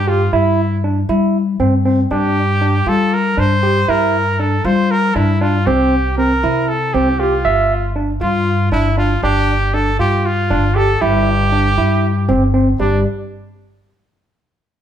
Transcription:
0.00 0.29 G2 medium
0.08 0.33 F4 medium
0.08 0.21 G4 medium
0.33 1.05 G2 medium
0.33 0.60 E4 medium
0.33 0.81 E4 medium
0.84 0.97 D4 medium
1.09 1.56 G3 loud
1.09 1.37 E4 medium
1.60 2.07 G2 medium
1.60 1.74 C4 medium
1.86 1.99 C4 medium
2.11 2.83 G2 medium
2.11 2.38 D4 medium
2.11 2.90 G4 loud
2.62 2.75 D4 medium
2.86 3.34 G3 medium
2.86 3.14 F4 medium
2.86 3.15 A4 medium
3.14 3.40 A#4 medium
3.38 3.85 G2 medium
3.38 3.51 D4 medium
3.38 3.91 C5 loud
3.63 3.77 G4 medium
3.88 4.61 G2 medium
3.88 4.16 E4 medium
3.88 4.41 A#4 medium
4.39 4.53 D4 medium
4.39 4.67 A4 medium
4.64 5.12 G3 loud
4.64 4.92 F4 medium
4.64 4.92 C5 medium
4.91 5.17 A#4 medium
5.15 5.63 G2 medium
5.15 5.29 D4 medium
5.15 5.43 E4 medium
5.41 5.55 D4 medium
5.41 5.68 F4 medium
5.66 6.39 C2 medium
5.66 5.94 C4 medium
5.66 6.17 G4 medium
6.18 6.32 C4 medium
6.18 6.70 A#4 medium
6.43 6.90 C3 loud
6.43 6.71 E4 medium
6.68 6.95 A4 medium
6.94 7.41 C2 medium
6.94 7.08 C4 medium
6.94 7.21 G4 medium
7.19 7.95 F4 medium
7.19 7.33 G4 medium
7.45 8.17 G1 medium
7.45 7.72 E5 loud
7.96 8.09 D4 medium
8.21 8.68 G2 medium
8.21 8.48 F4 medium
8.21 8.69 F4 medium
8.72 9.19 G1 medium
8.72 8.86 D4 medium
8.72 8.96 E4 medium
8.98 9.11 D4 medium
8.98 9.21 F4 medium
9.23 9.95 G1 medium
9.23 9.51 D4 medium
9.23 9.76 G4 medium
9.74 9.88 D4 medium
9.74 9.99 A4 medium
9.99 10.52 G2 medium
9.99 10.27 F4 medium
9.99 10.27 G4 medium
10.26 10.78 F4 medium
10.50 10.98 G1 medium
10.50 10.64 D4 medium
10.76 10.90 G4 medium
10.76 11.03 A4 medium
11.01 11.74 G1 loud
11.01 11.29 E4 medium
11.01 12.54 G4 loud
11.52 11.66 D4 medium
11.78 12.30 G2 medium
11.78 12.05 E4 medium
12.29 12.76 G1 loud
12.29 12.42 C4 medium
12.54 12.68 C4 medium
12.79 13.03 G1 medium
12.79 13.03 G3 medium
12.79 13.04 D4 medium

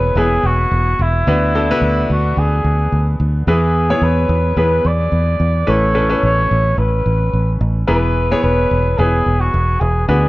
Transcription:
0.00 0.11 E1 medium
0.00 1.28 E3 medium
0.00 0.17 B3 medium
0.00 0.17 E4 medium
0.00 0.17 G#4 medium
0.00 0.17 B4 medium
0.00 0.19 B4 loud
0.00 1.28 C#5 medium
0.15 0.38 E1 loud
0.15 1.15 B3 medium
0.15 1.15 E4 medium
0.15 1.15 G#4 medium
0.15 0.47 G#4 loud
0.15 1.15 B4 medium
0.43 0.66 E1 medium
0.43 1.03 F#4 loud
0.71 0.94 E1 loud
0.99 1.21 E1 loud
0.99 2.10 E4 loud
1.27 1.72 D2 loud
1.27 2.06 D3 medium
1.27 1.52 B3 medium
1.27 1.52 D4 medium
1.27 1.52 F#4 medium
1.27 1.52 B4 medium
1.55 1.68 B3 medium
1.55 1.68 D4 medium
1.55 1.68 F#4 medium
1.55 1.68 A4 medium
1.71 2.66 B3 medium
1.71 2.66 D4 medium
1.71 2.66 F#4 medium
1.71 2.66 B4 loud
1.81 2.04 D2 loud
2.09 2.32 D2 loud
2.09 2.40 F#4 medium
2.37 2.59 D2 medium
2.37 3.20 G#4 medium
2.64 2.87 D2 medium
2.92 3.15 D2 medium
3.20 3.42 D2 loud
3.47 3.92 E2 loud
3.47 4.26 E3 medium
3.47 3.85 B3 medium
3.47 3.85 E4 medium
3.47 3.85 G#4 medium
3.47 4.05 G#4 medium
3.47 3.85 B4 medium
3.90 4.50 B3 medium
3.90 4.50 E4 medium
3.90 4.50 G#4 medium
3.90 4.50 C#5 medium
4.02 4.24 E2 loud
4.02 4.57 B4 loud
4.29 4.52 E2 loud
4.57 4.80 E2 medium
4.57 5.56 B3 medium
4.57 5.56 E4 medium
4.57 5.56 G#4 medium
4.57 5.56 B4 medium
4.57 4.88 B4 loud
4.85 5.07 E2 loud
4.85 5.71 D5 loud
5.12 5.35 E2 medium
5.40 5.63 E2 loud
5.67 6.13 A1 loud
5.67 6.46 A2 medium
5.67 5.92 C#4 medium
5.67 5.92 E4 medium
5.67 5.92 A4 medium
5.67 5.92 B4 medium
5.67 6.24 C#5 loud
5.95 6.08 C#4 medium
5.95 6.08 E4 medium
5.95 6.08 A4 medium
5.95 6.08 B4 medium
6.09 7.05 C#4 medium
6.09 7.05 E4 medium
6.09 7.06 A4 medium
6.09 7.06 B4 medium
6.23 6.46 A1 loud
6.23 6.75 C#5 loud
6.51 6.73 A1 loud
6.78 7.00 A1 medium
6.78 7.57 B4 medium
7.06 7.28 A1 loud
7.33 7.56 A1 medium
7.61 7.83 A1 loud
7.87 8.33 E1 loud
7.87 8.67 E3 medium
7.87 8.25 B3 medium
7.87 8.25 E4 medium
7.87 8.25 G#4 medium
7.87 8.25 B4 medium
7.87 8.40 B4 loud
8.31 8.91 B3 medium
8.31 8.91 E4 medium
8.31 8.91 G#4 medium
8.31 8.91 C#5 medium
8.43 8.66 E1 loud
8.43 8.99 B4 loud
8.71 8.94 E1 loud
8.98 9.21 E1 loud
8.98 9.97 B3 medium
8.98 9.97 E4 medium
8.98 9.42 G#4 loud
8.98 9.97 G#4 medium
8.98 9.97 B4 medium
9.26 9.49 E1 medium
9.40 9.82 F#4 medium
9.54 9.76 E1 loud
9.80 10.04 E1 loud
9.80 10.07 G#4 loud
10.08 10.29 D2 loud
10.08 10.29 D3 medium
10.08 10.29 B3 medium
10.08 10.29 D4 medium
10.08 10.29 F#4 medium
10.08 10.29 G#4 loud
10.08 10.29 B4 medium

